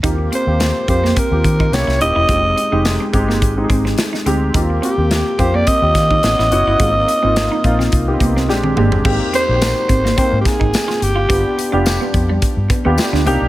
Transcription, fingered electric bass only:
X:1
M:4/4
L:1/16
Q:"Swing 16ths" 1/4=107
K:Ablyd
V:1 name="Fingered electric bass" clef=bass
E,,2 z E,,2 z F,,2 z E,, E,2 C,, C,, E,,, =E,,, | F,,,2 z F,,,2 z G,,,2 A,,,2 A,,,2 z2 D,,2 | E,,2 z E,,2 z F,,2 z E,, E,2 =A,,, A,,, ^F,,, G,,, | A,,,2 z A,,,2 z B,,,2 C,,2 C,,2 B,,,2 G,,,2 |
A,,, z2 B,,,2 z A,,,2 z A,, z A,,, z2 G,,,2 | G,,, z2 F,,,2 z F,,2 z G,, z E,, z D,, C,, _C,, |]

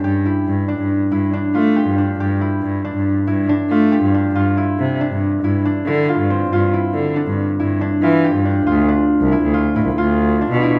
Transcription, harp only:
X:1
M:5/4
L:1/8
Q:1/4=139
K:Flyd
V:1 name="Harp"
G E2 D2 E D F G D | G E2 D2 E D F G D | F E2 D2 E D E F C | F E2 D2 E D F G D |
F D2 E F E F2 D E |]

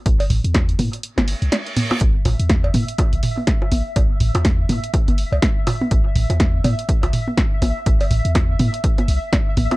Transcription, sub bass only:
X:1
M:4/4
L:1/16
Q:"Swing 16ths" 1/4=123
K:Am
V:1 name="Sub bass" clef=bass
A,,, z A,,, E,,3 A,, z2 G,,,2 C,, z4 | A,,, z A,,, E,,3 A,, z2 A,,, z4 A,,, z | A,,, z A,,, E,,3 A,, z2 G,,,2 C,, z4 | A,,, z A,,, E,,3 A,, z2 A,,, z4 A,,, z |
A,,, z A,,, E,,3 A,, z3 C,, z3 A,,, z |]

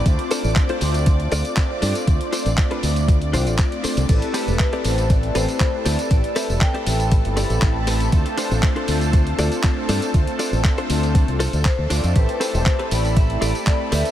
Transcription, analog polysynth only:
X:1
M:4/4
L:1/8
Q:1/4=119
K:Ddor
V:1 name="Analog polysynth"
[A,CDFc]3 [A,CDFc]3 [A,CDFc]2 | [A,CDFc]3 [A,CDF]2 [A,CDF]3 | [A,CEGB]3 [A,CEGB]3 [A,CEGB]2 | [CEGB]3 [A,CEGB]2 [A,CEGb]3 |
[A,CDFc]3 [A,CDFc]3 [A,CDFc]2 | [A,CDFc]3 [A,CDFc]2 z2 [A,CDFd] | [A,CEGc]3 [A,CEGb]3 [A,CEGb]2 |]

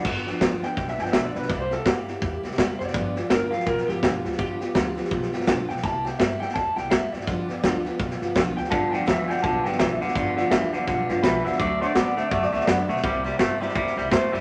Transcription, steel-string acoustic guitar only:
X:1
M:4/4
L:1/8
Q:"Swing" 1/4=166
K:Gmix
V:1 name="Steel-string acoustic guitar"
[G,,D,F,B,DG] [F,B,DG] [G,,D,F,B,DG] [F,B,DG] [F,B,DG] [F,B,DG] [G,,D,F,B,DG] [F,B,DG] | [C,G,_B,EG] [B,EG] [C,G,B,EG] [B,EG] [G,B,EG] [B,EG] [C,G,B,EG] [B,EG] | [G,,D,F,B,FG] [F,B,FG] [G,,D,F,B,FG] [F,B,FG] [F,B,FG] [F,B,FG] [G,,D,F,B,FG] [F,B,FG] | [G,,D,F,B,FG] [F,B,FG] [G,,D,F,B,FG] [F,B,FG] [F,B,FG] [F,B,FG] [G,,D,F,B,FG] [F,B,FG] |
[C,G,_B,EG] [B,EG] [C,G,B,EG] [B,EG] [G,B,EG] [B,EG] [C,G,B,EG] [B,EG] | [G,,D,F,B,FG] [F,B,FG] [G,,D,F,B,FG] [F,B,FG] [F,B,FG] [F,B,FG] [G,,D,F,B,FG] [F,B,FG] | [G,,D,F,B,FG] [F,B,FG] [G,,D,F,B,FG] [F,B,FG] [F,B,FG] [F,B,FG] [G,,D,F,B,FG] [F,B,FG] | [G,,D,F,B,FG] [F,B,FG] [G,,D,F,B,FG] [F,B,FG] [F,B,FG] [F,B,FG] [G,,D,F,B,FG] [F,B,FG] |
[D,^F,CDA] [CDA] [D,F,CDA] [CDA] [F,CDA] [CDA] [D,F,CDA] [CDA] | [C,G,_B,EG] [B,EG] [C,G,B,EG] [B,EG] [G,B,EG] [B,EG] [C,G,B,EG] [B,EG] |]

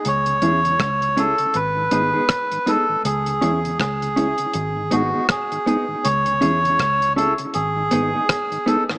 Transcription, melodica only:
X:1
M:4/4
L:1/8
Q:"Swing 16ths" 1/4=80
K:C#m
V:1 name="Melodica"
c3 A B3 A | G2 G3 F G2 | c3 A G3 A |]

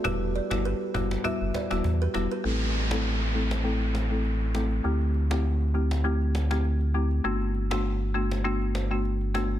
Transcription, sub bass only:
X:1
M:4/4
L:1/16
Q:"Swing 16ths" 1/4=100
K:Ador
V:1 name="Sub bass" clef=bass
E,,,3 G,,,2 z F,,,2 z F,,, z E,,, E,,2 E,,, z | A,,,16 | D,,16 | G,,,16 |]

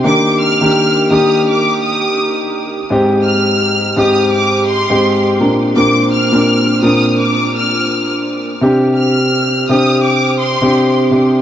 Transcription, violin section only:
X:1
M:4/4
L:1/16
Q:"Swing 16ths" 1/4=84
K:Cm
V:1 name="Violin section"
d'2 f'4 e'2 d'2 e'3 z3 | z2 f'4 e'2 d'2 c'3 z3 | d'2 f'4 e'2 d'2 f'3 z3 | z2 f'4 e'2 d'2 c'3 z3 |]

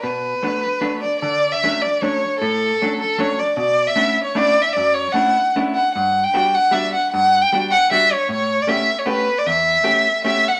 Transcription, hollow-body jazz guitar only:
X:1
M:3/4
L:1/8
Q:1/4=153
K:Bm
V:1 name="Hollow-body jazz guitar"
B,,2 [F,A,B,D] z [F,A,B,D] z | [K:D] D,2 [F,A,CD] z [F,A,CD] z | A,,2 [F,A,CD] z [F,A,CD] z | B,,2 [A,B,CDE] z [A,B,CDE] z |
F,,2 [A,B,CDE] z [A,B,CDE] z | G,,2 [G,B,DF] z [G,B,DF] z | G,,2 [G,B,DF] z [G,B,DF] z | A,,2 [A,B,CG] z [A,B,CG] z |
E,,2 [A,B,CG] z [A,B,CG] z |]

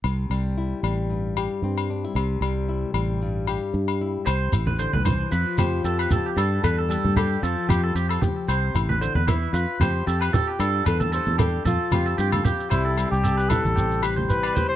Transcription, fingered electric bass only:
X:1
M:4/4
L:1/16
Q:"Swing 16ths" 1/4=114
K:C
V:1 name="Fingered electric bass" clef=bass
C,,2 C,,4 A,,,6 G,,4 | C,,2 C,,4 A,,,6 G,,4 | C,,2 A,,,3 C,,3 F,, z F,,2 F,,2 z2 | G,,2 E,,3 G,,3 F,, z F,,2 F,,2 z2 |
C,,2 A,,,3 E,,3 F,, z F,,2 F,,2 z2 | G,,2 E,,3 E,,3 F,, z F,,2 G,,2 z2 | C,,3 C,,4 A,,,8 z |]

